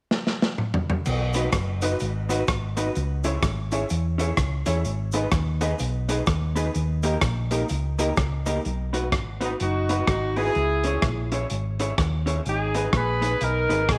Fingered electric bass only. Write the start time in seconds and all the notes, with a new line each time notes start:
1.07 B1
1.53 F#1
2.01 G#1
2.49 G#1
2.97 C#2
3.43 G#1
3.91 E2
4.38 C#2
4.67 E2
4.85 G#1
5.32 D#2
5.80 B1
6.28 D#2
6.76 D#2
7.22 A#1
7.71 C#2
8.18 C#2
8.66 B1
9.13 G#1
9.61 F#1
10.08 G#1
10.56 C#2
11.03 A#1
11.51 G#1
11.99 D#2
12.46 G#1
12.93 A#1
13.41 B1
13.70 G#1
13.89 A#1